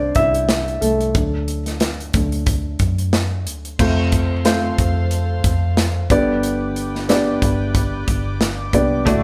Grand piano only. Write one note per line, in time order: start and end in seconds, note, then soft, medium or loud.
0.00 0.78 E3 soft
0.00 0.78 G3 soft
0.00 1.17 C4 medium
0.00 1.15 D4 medium
0.00 1.17 C5 medium
0.00 1.17 D5 medium
0.16 0.79 E4 medium
0.16 0.84 E5 medium
0.81 1.13 A3 medium
0.81 1.44 A4 medium
1.14 1.60 F#3 soft
1.14 1.60 A3 soft
1.14 1.60 D4 soft
2.14 2.44 F#3 soft
2.14 2.44 A3 soft
2.14 2.44 D4 soft
3.79 4.74 C3 medium
3.79 4.31 A3 medium
3.79 4.31 C4 medium
3.79 4.32 F4 medium
3.79 4.32 C5 medium
4.45 5.46 A3 medium
4.45 5.46 C4 medium
4.45 5.46 F4 medium
4.45 5.46 C5 medium
6.11 7.06 G2 medium
6.11 7.06 D3 medium
6.11 6.91 B3 medium
6.11 6.91 D4 medium
6.11 6.91 G4 medium
6.11 6.92 D5 loud
7.09 8.10 B3 medium
7.09 8.10 D4 medium
7.09 8.10 G4 medium
7.09 8.10 D5 medium
8.74 9.00 B3 medium
8.74 9.00 D4 medium
8.74 9.00 G4 medium
8.74 9.00 D5 medium
9.07 9.23 A2 medium
9.07 9.23 A3 medium
9.07 9.23 E4 medium
9.07 9.23 F#4 medium
9.07 9.23 D5 medium